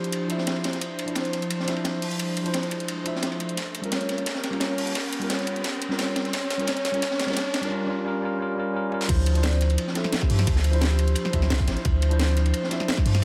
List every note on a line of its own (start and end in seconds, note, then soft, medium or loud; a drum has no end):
0.00 0.27 F3 medium
0.00 3.53 F3 medium
0.00 0.27 D4 medium
0.00 3.53 D4 medium
0.00 0.28 E4 medium
0.00 0.79 E4 medium
0.00 0.22 G4 medium
0.00 0.29 C5 loud
0.00 3.53 C5 medium
0.00 riser medium
0.04 closed hi-hat soft
0.12 closed hi-hat medium
0.12 ride medium
0.28 1.05 F3 medium
0.28 1.05 D4 medium
0.28 1.06 E4 medium
0.28 closed hi-hat medium
0.28 ride medium
0.32 1.07 E5 medium
0.38 snare soft
0.47 snare loud
0.47 closed hi-hat medium
0.47 ride medium
0.56 ride soft
0.64 snare loud
0.64 closed hi-hat medium
0.64 ride medium
0.73 snare soft
0.73 closed hi-hat soft
0.81 closed hi-hat medium
0.81 ride medium
0.99 closed hi-hat medium
0.99 ride medium
1.06 1.64 F3 medium
1.06 1.65 D4 medium
1.06 1.66 E4 medium
1.06 closed hi-hat soft
1.10 1.67 C5 loud
1.15 snare loud
1.15 closed hi-hat medium
1.15 ride medium
1.25 closed hi-hat soft
1.33 snare soft
1.33 closed hi-hat medium
1.33 ride medium
1.42 closed hi-hat soft
1.42 ride soft
1.50 closed hi-hat medium
1.50 ride medium
1.60 snare soft
1.66 2.43 F3 medium
1.66 2.43 D4 medium
1.66 2.44 E4 medium
1.66 snare medium
1.66 closed hi-hat medium
1.66 ride medium
1.70 2.45 E5 medium
1.76 ride soft
1.85 snare loud
1.85 closed hi-hat medium
1.85 ride medium
2.02 closed hi-hat medium
2.02 open hi-hat medium
2.11 closed hi-hat soft
2.20 closed hi-hat medium
2.20 ride medium
2.37 closed hi-hat medium
2.37 ride medium
2.44 3.03 F3 medium
2.44 3.03 D4 medium
2.44 3.04 E4 medium
2.44 closed hi-hat soft
2.48 3.05 C5 loud
2.54 snare loud
2.54 closed hi-hat medium
2.54 ride medium
2.62 snare soft
2.62 closed hi-hat soft
2.71 closed hi-hat medium
2.71 ride medium
2.80 closed hi-hat soft
2.88 closed hi-hat medium
2.88 ride medium
3.04 3.55 F3 medium
3.04 3.56 D4 medium
3.04 3.57 E4 medium
3.04 closed hi-hat medium
3.04 ride medium
3.08 3.58 E5 medium
3.16 snare soft
3.22 snare loud
3.22 closed hi-hat medium
3.22 ride medium
3.32 ride soft
3.40 closed hi-hat medium
3.40 ride medium
3.49 closed hi-hat soft
3.57 7.67 C#4 medium
3.57 7.67 G4 medium
3.57 7.67 A#4 medium
3.57 snare soft
3.57 closed hi-hat medium
3.57 ride medium
3.75 closed hi-hat medium
3.75 ride medium
3.82 4.24 G3 medium
3.82 4.25 C#4 medium
3.82 4.25 F4 medium
3.82 closed hi-hat soft
3.86 4.26 A#4 medium
3.92 3.99 C#5 medium
3.92 snare medium
3.92 snare loud
3.92 closed hi-hat medium
3.92 ride medium
4.01 4.25 C#5 medium
4.01 closed hi-hat soft
4.09 snare soft
4.09 closed hi-hat medium
4.09 ride medium
4.18 closed hi-hat soft
4.18 ride soft
4.26 snare medium
4.26 closed hi-hat medium
4.26 ride medium
4.35 snare soft
4.44 snare medium
4.44 closed hi-hat medium
4.44 ride medium
4.50 4.93 G3 medium
4.50 4.94 C#4 medium
4.50 4.94 F4 medium
4.50 ride soft
4.54 4.95 A#4 medium
4.60 4.68 C#5 medium
4.60 snare loud
4.60 snare medium
4.60 closed hi-hat medium
4.60 ride loud
4.70 4.94 C#5 medium
4.78 closed hi-hat medium
4.78 open hi-hat medium
4.87 closed hi-hat soft
4.95 snare medium
4.95 closed hi-hat medium
4.95 ride medium
5.13 closed hi-hat medium
5.13 ride medium
5.19 5.62 G3 medium
5.19 5.63 C#4 medium
5.19 5.63 F4 medium
5.19 closed hi-hat soft
5.24 5.64 A#4 loud
5.30 5.37 C#5 medium
5.30 snare loud
5.30 snare medium
5.30 closed hi-hat medium
5.30 ride medium
5.39 5.63 C#5 medium
5.39 snare soft
5.39 closed hi-hat soft
5.47 closed hi-hat medium
5.47 ride medium
5.56 closed hi-hat soft
5.64 snare medium
5.64 closed hi-hat medium
5.64 ride medium
5.82 closed hi-hat medium
5.82 ride medium
5.89 6.31 G3 medium
5.89 6.32 C#4 medium
5.89 6.32 F4 medium
5.89 snare medium
5.93 6.33 A#4 loud
5.99 6.06 C#5 medium
5.99 snare medium
5.99 snare loud
5.99 closed hi-hat medium
5.99 ride medium
6.08 6.32 C#5 medium
6.08 ride soft
6.16 snare loud
6.16 closed hi-hat medium
6.16 ride medium
6.25 snare soft
6.25 closed hi-hat soft
6.33 6.41 C#5 medium
6.33 snare medium
6.33 closed hi-hat loud
6.33 ride loud
6.43 6.67 C#5 medium
6.50 snare medium
6.50 closed hi-hat medium
6.50 ride medium
6.57 6.65 G3 medium
6.57 6.66 C#4 medium
6.57 6.67 F4 medium
6.57 closed hi-hat soft
6.62 6.67 A#4 loud
6.67 6.75 C#5 medium
6.67 snare medium
6.67 snare loud
6.67 closed hi-hat loud
6.67 ride medium
6.77 7.01 C#5 medium
6.77 closed hi-hat soft
6.85 snare medium
6.85 closed hi-hat medium
6.92 7.00 G3 medium
6.92 7.01 C#4 medium
6.92 7.01 F4 medium
6.92 closed hi-hat soft
6.96 7.02 A#4 loud
7.02 7.09 C#5 medium
7.02 snare medium
7.02 closed hi-hat medium
7.02 ride medium
7.11 7.35 C#5 medium
7.11 snare medium
7.19 snare medium
7.19 snare loud
7.19 closed hi-hat medium
7.19 ride medium
7.24 7.34 G3 medium
7.24 snare medium
7.24 ride medium
7.28 7.35 C#4 medium
7.28 7.36 F4 medium
7.28 7.36 A#4 loud
7.28 snare medium
7.28 ride medium
7.33 snare medium
7.33 ride medium
7.36 7.44 C#5 medium
7.36 snare medium
7.36 snare loud
7.36 closed hi-hat loud
7.36 ride medium
7.46 7.70 C#5 medium
7.54 snare medium
7.54 snare loud
7.54 closed hi-hat medium
7.54 ride medium
7.61 7.68 G3 loud
7.61 7.70 C#4 medium
7.61 7.70 F4 medium
7.61 closed hi-hat soft
7.65 7.71 A#4 loud
7.69 7.85 G3 medium
7.69 7.86 C#4 medium
7.69 7.88 F4 medium
7.73 7.88 A#4 loud
7.86 8.02 G3 loud
7.86 8.04 C#4 medium
7.86 8.05 F4 medium
7.90 8.05 A#4 loud
8.04 8.20 G3 loud
8.04 8.21 C#4 medium
8.04 8.22 F4 medium
8.08 8.23 A#4 loud
8.21 8.37 G3 medium
8.21 8.38 C#4 medium
8.21 8.39 F4 medium
8.25 8.40 A#4 loud
8.38 8.54 G3 medium
8.38 8.56 C#4 medium
8.38 8.56 F4 medium
8.42 8.57 A#4 loud
8.55 8.71 G3 medium
8.55 8.73 C#4 medium
8.55 8.74 F4 medium
8.60 8.74 A#4 loud
8.73 8.89 G3 loud
8.73 8.90 C#4 medium
8.73 8.91 F4 medium
8.77 8.92 A#4 loud
8.90 9.07 G3 medium
8.90 9.08 C#4 medium
8.90 9.08 F4 medium
8.90 high tom medium
8.94 9.09 A#4 loud
9.01 snare medium
9.08 9.77 D2 loud
9.08 9.31 F3 loud
9.08 13.24 F3 medium
9.08 9.32 D4 medium
9.08 11.82 E4 medium
9.08 9.32 E4 medium
9.08 13.24 C5 medium
9.08 9.32 C5 loud
9.08 kick loud
9.08 closed hi-hat loud
9.08 ride medium
9.08 crash loud
9.26 closed hi-hat medium
9.26 ride medium
9.33 9.92 F3 medium
9.33 9.93 D4 medium
9.33 9.94 E4 medium
9.33 closed hi-hat soft
9.37 9.94 C5 loud
9.43 9.51 D5 medium
9.43 snare loud
9.43 closed hi-hat loud
9.43 ride medium
9.53 9.94 C5 medium
9.53 closed hi-hat soft
9.61 snare soft
9.61 closed hi-hat medium
9.61 ride medium
9.70 closed hi-hat soft
9.70 ride soft
9.78 closed hi-hat loud
9.78 ride medium
9.87 snare soft
9.93 10.70 F3 medium
9.93 10.71 D4 medium
9.93 10.72 E4 medium
9.93 10.16 A4 medium
9.93 snare medium
9.93 closed hi-hat medium
9.93 ride medium
9.97 10.72 E5 medium
10.04 snare medium
10.04 ride soft
10.12 snare loud
10.12 closed hi-hat loud
10.12 ride medium
10.21 10.47 G4 medium
10.21 kick loud
10.21 snare medium
10.30 10.45 G2 medium
10.30 closed hi-hat medium
10.30 open hi-hat medium
10.39 snare medium
10.39 closed hi-hat soft
10.47 11.15 D2 loud
10.47 kick loud
10.47 closed hi-hat loud
10.47 ride medium
10.56 snare soft
10.64 closed hi-hat medium
10.64 ride medium
10.71 11.30 F3 medium
10.71 11.31 D4 medium
10.71 11.32 E4 medium
10.71 closed hi-hat soft
10.75 11.32 C5 loud
10.81 10.89 G4 medium
10.81 snare loud
10.81 closed hi-hat loud
10.81 ride medium
10.90 11.25 G4 medium
10.90 snare soft
10.90 closed hi-hat soft
10.99 closed hi-hat medium
10.99 ride medium
11.08 closed hi-hat soft
11.15 closed hi-hat medium
11.15 ride loud
11.25 snare soft
11.31 11.49 D2 medium
11.31 12.08 F3 medium
11.31 12.09 D4 medium
11.31 12.09 E4 medium
11.31 kick medium
11.31 closed hi-hat medium
11.31 ride medium
11.35 12.10 E5 medium
11.42 snare soft
11.42 snare medium
11.50 11.59 C2 medium
11.50 snare loud
11.50 closed hi-hat loud
11.50 ride medium
11.60 kick loud
11.60 ride soft
11.68 11.76 A1 medium
11.68 snare loud
11.68 closed hi-hat medium
11.68 ride medium
11.77 snare soft
11.77 closed hi-hat soft
11.85 12.53 D2 loud
11.85 13.24 D4 medium
11.85 kick loud
11.85 closed hi-hat medium
11.85 ride medium
12.02 closed hi-hat medium
12.02 ride medium
12.09 12.68 F3 medium
12.09 12.69 D4 medium
12.09 12.70 E4 medium
12.09 closed hi-hat soft
12.13 12.70 C5 loud
12.19 snare loud
12.19 closed hi-hat medium
12.19 ride loud
12.29 closed hi-hat soft
12.36 snare soft
12.36 closed hi-hat medium
12.36 ride medium
12.46 closed hi-hat soft
12.46 ride soft
12.54 closed hi-hat medium
12.54 ride medium
12.63 snare medium
12.69 13.24 F3 medium
12.69 13.24 D4 medium
12.69 13.24 E4 medium
12.69 snare medium
12.69 closed hi-hat medium
12.69 ride medium
12.73 13.24 E5 medium
12.80 snare medium
12.80 ride soft
12.88 snare loud
12.88 closed hi-hat medium
12.88 ride loud
12.97 kick loud
12.97 snare medium
13.06 13.21 G2 medium
13.06 closed hi-hat medium
13.06 open hi-hat medium
13.15 snare medium
13.15 closed hi-hat soft